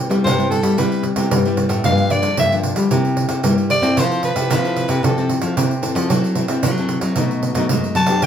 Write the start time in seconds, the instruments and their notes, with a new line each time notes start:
Already playing: nylon-string guitar C3
0.09 nylon-string guitar G3 B3 E4, pandeiro
0.24 nylon-string guitar G2 C3, soprano saxophone C5, pandeiro
0.38 nylon-string guitar G3 B3 E4, pandeiro
0.50 soprano saxophone A4, pandeiro
0.63 nylon-string guitar G3, pandeiro
0.77 nylon-string guitar C3 G3 B3 E4, soprano saxophone B4, pandeiro
0.92 pandeiro
1.03 pandeiro
1.16 nylon-string guitar C3 G3 B3 E4, pandeiro
1.31 nylon-string guitar G2 G3, pandeiro
1.45 nylon-string guitar G3 B3 E4, pandeiro
1.57 pandeiro
1.69 nylon-string guitar A2, pandeiro
1.84 nylon-string guitar G2 F3 A#3 D4, soprano saxophone F5, pandeiro
1.98 pandeiro
2.10 nylon-string guitar F3 A#3 D4, soprano saxophone D5, pandeiro
2.22 nylon-string guitar D3, pandeiro
2.37 nylon-string guitar G2 D3 F3 A#3 D4, soprano saxophone E5, pandeiro
2.52 nylon-string guitar F3 A#3 D4, pandeiro
2.63 pandeiro
2.76 nylon-string guitar G3, pandeiro
2.90 nylon-string guitar C3 G3 A#3 E4, pandeiro
3.05 pandeiro
3.17 pandeiro
3.29 nylon-string guitar C3, pandeiro
3.43 nylon-string guitar G2 G3 A#3 E4, pandeiro
3.58 pandeiro
3.70 soprano saxophone D5, pandeiro
3.82 nylon-string guitar C4 E4 A4, pandeiro
3.97 nylon-string guitar F3, soprano saxophone C5, pandeiro
4.12 pandeiro
4.23 soprano saxophone B4, pandeiro
4.36 nylon-string guitar C3 C4 E4 A4, pandeiro
4.50 nylon-string guitar C3 F3, pandeiro
4.64 nylon-string guitar C4 E4 A4, pandeiro
4.76 pandeiro
4.88 nylon-string guitar C3, pandeiro
5.03 nylon-string guitar C3 F3, soprano saxophone A4, pandeiro
5.18 nylon-string guitar C4 E4 A4, pandeiro
5.30 pandeiro
5.42 nylon-string guitar F3, pandeiro
5.57 nylon-string guitar C3 C4 E4 A4, pandeiro
5.71 pandeiro
5.82 nylon-string guitar C4 E4 A4, pandeiro
5.95 nylon-string guitar F3, pandeiro
6.10 nylon-string guitar F#3 C4 E4 A4, pandeiro
6.24 pandeiro
6.35 nylon-string guitar C4 E4 A4, pandeiro
6.48 nylon-string guitar C4 E4 A4, pandeiro
6.63 nylon-string guitar F#3, pandeiro
6.78 nylon-string guitar C4 E4 A4, pandeiro
6.89 pandeiro
7.01 nylon-string guitar F#3, pandeiro
7.16 nylon-string guitar B2 F#3 A3 D#4, pandeiro
7.31 pandeiro
7.43 pandeiro
7.55 nylon-string guitar B2 F#3 A3 D#4, pandeiro
7.69 nylon-string guitar F#2 F#3 G#3 A3 D#4, pandeiro
7.84 pandeiro
7.95 nylon-string guitar F#3, soprano saxophone A5, pandeiro
8.07 nylon-string guitar B3 D4 G4, pandeiro
8.22 nylon-string guitar E3, soprano saxophone G5, pandeiro